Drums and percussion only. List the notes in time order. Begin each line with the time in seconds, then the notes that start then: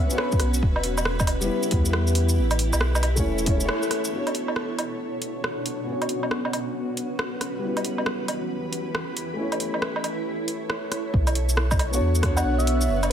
0.10 shaker
0.18 cross-stick
0.32 kick, shaker
0.40 cross-stick, open hi-hat
0.54 shaker
0.63 kick
0.76 low woodblock
0.83 open hi-hat
0.98 low woodblock, shaker
1.05 cross-stick
1.20 kick, low woodblock, shaker
1.27 open hi-hat, low woodblock
1.41 shaker
1.63 shaker
1.71 kick, open hi-hat
1.85 shaker
1.93 cross-stick
2.07 shaker
2.15 open hi-hat
2.29 shaker
2.51 open hi-hat, low woodblock, shaker
2.59 open hi-hat
2.73 low woodblock, shaker
2.81 cross-stick
2.95 low woodblock, shaker
3.03 open hi-hat, low woodblock
3.17 kick, shaker
3.38 shaker
3.46 kick, open hi-hat
3.60 shaker
3.69 cross-stick
3.83 shaker
3.91 cross-stick, open hi-hat
4.05 shaker
4.27 open hi-hat, low woodblock
4.35 open hi-hat
4.48 low woodblock
4.56 cross-stick
4.79 open hi-hat, low woodblock
5.22 open hi-hat
5.44 cross-stick
5.66 open hi-hat
6.02 open hi-hat, low woodblock
6.09 open hi-hat
6.23 low woodblock
6.31 cross-stick
6.45 low woodblock
6.53 open hi-hat, low woodblock
6.97 open hi-hat
7.19 cross-stick
7.41 cross-stick, open hi-hat
7.77 open hi-hat, low woodblock
7.85 open hi-hat
7.98 low woodblock
8.06 cross-stick
8.28 open hi-hat, low woodblock
8.73 open hi-hat
8.95 cross-stick
9.17 open hi-hat
9.52 open hi-hat, low woodblock
9.60 open hi-hat
9.74 low woodblock
9.82 cross-stick
9.96 low woodblock
10.04 open hi-hat, low woodblock
10.48 open hi-hat
10.70 cross-stick
10.92 cross-stick, open hi-hat
11.14 kick
11.27 open hi-hat, low woodblock, shaker
11.35 open hi-hat
11.49 shaker
11.57 cross-stick
11.71 kick, low woodblock, shaker
11.79 open hi-hat, low woodblock
11.93 shaker
12.15 shaker
12.23 kick, cross-stick, open hi-hat
12.37 low woodblock, shaker
12.59 shaker
12.67 open hi-hat
12.81 shaker
13.03 open hi-hat, low woodblock, shaker